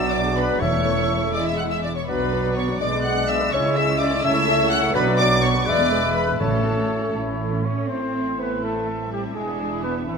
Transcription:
Already playing: B1 B2 F#3 D4 F#4 D5 E6
0.11 D5 D6
0.25 G#4
0.36 B4 B5
0.60 E1 E2 A3 E4 A4 C#5 E5 C#6
1.33 G#3 E4 G#4 D5 E5 D6
1.46 E5 E6
1.58 F#5 F#6
1.71 E5 E6
1.83 D5 D6
1.95 C#5 C#6
2.07 B1 B2 F#3 B3 D4 F#4 B4 D5 B5
2.20 D4 B4
2.32 B3 F#4
2.45 D4 B4
2.56 B3 F#4 C#5 C#6
2.69 D4 B4
2.79 B1 B2 G#3 B3 D4 G#4 D5 D6
2.93 D4 B4
3.04 B3 G#4 F#5 F#6
3.17 D4 B4
3.28 B3 G#4 E5 E6
3.40 D4 B4
3.52 C#2 C#3 G#3 C#4 E4 G#4 C#5 E5 C#6
3.65 E4 C#5
3.76 C#4 G#4 E5 E6
3.88 E4 C#5
4.00 C#4 G#4 D5 D6
4.11 E4 C#5
4.23 C#2 C#3 A3 C#4 E4 A4 C#5 E5 E6
4.35 E4 C#5
4.47 C#4 A4
4.60 E4 C#5
4.70 C#4 A4 F#5 F#6
4.83 E4 C#5
4.94 B1 B2 F#3 B3 D4 F#4 B4 D5 B5
5.07 D4 B4
5.18 B3 F#4 D5 D6
5.31 D4 B4
5.42 B3 F#4 C#5 C#6
5.55 D4 B4
5.65 E1 E2 G#3 B3 G#4 B4 D5 E5 D6
5.79 B3 B4
5.91 G#3 G#4
6.03 B3 B4
6.14 G#3 G#4 B4 B5
6.27 B3 B4
6.39 A1 A2 A3 C#4 E4 A4 C#5 A5
6.52 C#4 A4
6.65 A3 E4
6.77 C#4 A4
6.90 A3 E4
7.02 C#4 A4
7.15 A1 A2 E3 A3 E4
7.27 C#4 A4
7.39 A3 E4
7.52 C#4 A4
7.64 A3 C#4 E4 C#5
7.77 C#4 A4
7.89 A1 A3 C4 E4 C5 E5
8.02 C4
8.15 E4
8.27 C4
8.38 A3 B3 B4
8.51 C4
8.63 A3 E4 A4
8.75 C4
8.87 A3
8.99 C4
9.11 G3 E4 G4
9.24 C4
9.35 E1 G#3 D4 G#4
9.48 B3
9.60 D4
9.71 E4
9.82 B3 D4 B4
9.95 B3
10.06 A1 E3 A3 C4 E4

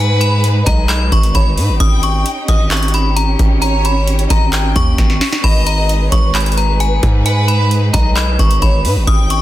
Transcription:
Already playing: G#2 G#3 D#4 G#4 B4
0.00 B4 G#5
0.21 B5, closed hi-hat
0.44 closed hi-hat
0.66 B1 D#5 A#5, kick, closed hi-hat
0.89 B5, clap, closed hi-hat
1.12 G#1 C#6, kick, closed hi-hat
1.23 closed hi-hat
1.34 G#1 C#5 B5, kick, closed hi-hat
1.57 G#2 B4, open hi-hat
1.69 G#1
1.80 G#1 C#4 G4 G5 D#6, kick, closed hi-hat
2.03 C#6, closed hi-hat
2.26 closed hi-hat
2.48 G#1 D#5 D#6, kick, closed hi-hat
2.71 C#6, clap, closed hi-hat
2.77 closed hi-hat
2.83 closed hi-hat
2.88 closed hi-hat
2.94 B5, closed hi-hat
3.16 A#5, closed hi-hat
3.39 G#1, kick, closed hi-hat
3.62 C#5 A#5, closed hi-hat
3.85 B5, closed hi-hat
4.08 closed hi-hat
4.19 closed hi-hat
4.30 G#1 D#5 A#5, kick, closed hi-hat
4.53 G5, clap, closed hi-hat
4.76 D#2 C#6, kick, closed hi-hat
4.98 G#1, kick, snare, closed hi-hat
5.10 snare
5.21 snare, open hi-hat
5.33 snare
5.44 G#1 G#3 D#4 G#4 B4 D#5 B5, kick, crash
5.67 A#5, closed hi-hat
5.89 closed hi-hat
6.12 G#1 C#5 C#6, kick, closed hi-hat
6.35 B5, clap, closed hi-hat
6.40 closed hi-hat
6.46 closed hi-hat
6.52 closed hi-hat
6.57 A#5, closed hi-hat
6.80 G#5, closed hi-hat
7.03 G#2, kick, closed hi-hat
7.25 B4 G#5, closed hi-hat
7.48 B5, closed hi-hat
7.71 closed hi-hat
7.93 B1 D#5 A#5, kick, closed hi-hat
8.16 B5, clap, closed hi-hat
8.39 G#1 C#6, kick, closed hi-hat
8.51 closed hi-hat
8.61 G#1 C#5 B5, kick, closed hi-hat
8.85 G#2 B4, open hi-hat
8.96 G#1
9.07 G#1 C#4 G4 G5 D#6, kick, closed hi-hat
9.30 C#6, closed hi-hat

